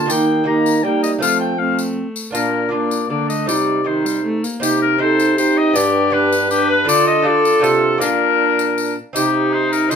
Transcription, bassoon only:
0, 0, Header, 1, 2, 480
1, 0, Start_track
1, 0, Tempo, 377596
1, 119, Time_signature, 3, 2, 24, 8
1, 12655, End_track
2, 0, Start_track
2, 0, Title_t, "Bassoon"
2, 0, Program_c, 0, 70
2, 125, Note_on_c, 0, 51, 68
2, 1072, Note_on_c, 0, 55, 64
2, 1091, Note_off_c, 0, 51, 0
2, 1545, Note_on_c, 0, 53, 67
2, 1564, Note_off_c, 0, 55, 0
2, 2624, Note_off_c, 0, 53, 0
2, 2975, Note_on_c, 0, 46, 67
2, 3945, Note_on_c, 0, 50, 56
2, 3964, Note_off_c, 0, 46, 0
2, 4420, Note_on_c, 0, 48, 55
2, 4439, Note_off_c, 0, 50, 0
2, 5640, Note_off_c, 0, 48, 0
2, 5875, Note_on_c, 0, 48, 80
2, 7317, Note_on_c, 0, 43, 82
2, 7336, Note_off_c, 0, 48, 0
2, 8732, Note_off_c, 0, 43, 0
2, 8740, Note_on_c, 0, 50, 79
2, 9651, Note_off_c, 0, 50, 0
2, 9698, Note_on_c, 0, 48, 76
2, 10192, Note_on_c, 0, 46, 73
2, 10211, Note_off_c, 0, 48, 0
2, 11399, Note_off_c, 0, 46, 0
2, 11637, Note_on_c, 0, 48, 71
2, 12603, Note_on_c, 0, 50, 68
2, 12622, Note_off_c, 0, 48, 0
2, 12655, Note_off_c, 0, 50, 0
2, 12655, End_track
0, 0, End_of_file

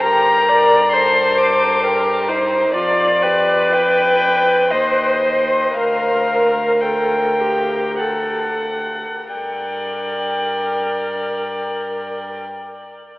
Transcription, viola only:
0, 0, Header, 1, 2, 480
1, 0, Start_track
1, 0, Key_signature, -2, "minor"
1, 0, Tempo, 903614
1, 19, Time_signature, 3, 2, 24, 8
1, 1459, Tempo, 985222
1, 2419, Tempo, 1022147
1, 2899, Tempo, 1081081
1, 3379, Tempo, 1188119
1, 3859, Tempo, 1339286
1, 4339, Tempo, 1301518
1, 5755, End_track
2, 0, Start_track
2, 0, Title_t, "Viola"
2, 0, Program_c, 0, 41
2, 21, Note_on_c, 0, 70, 79
2, 258, Note_on_c, 0, 74, 85
2, 266, Note_off_c, 0, 70, 0
2, 495, Note_on_c, 0, 72, 79
2, 503, Note_off_c, 0, 74, 0
2, 979, Note_on_c, 0, 70, 74
2, 987, Note_off_c, 0, 72, 0
2, 1213, Note_on_c, 0, 72, 72
2, 1221, Note_off_c, 0, 70, 0
2, 1455, Note_off_c, 0, 72, 0
2, 1458, Note_on_c, 0, 74, 80
2, 1692, Note_on_c, 0, 71, 83
2, 1700, Note_off_c, 0, 74, 0
2, 2417, Note_on_c, 0, 72, 76
2, 2425, Note_off_c, 0, 71, 0
2, 2894, Note_off_c, 0, 72, 0
2, 2897, Note_on_c, 0, 70, 70
2, 3380, Note_on_c, 0, 69, 55
2, 3386, Note_off_c, 0, 70, 0
2, 3615, Note_on_c, 0, 67, 54
2, 3621, Note_off_c, 0, 69, 0
2, 3860, Note_on_c, 0, 69, 46
2, 3866, Note_off_c, 0, 67, 0
2, 4099, Note_off_c, 0, 69, 0
2, 4339, Note_on_c, 0, 70, 55
2, 5472, Note_off_c, 0, 70, 0
2, 5755, End_track
0, 0, End_of_file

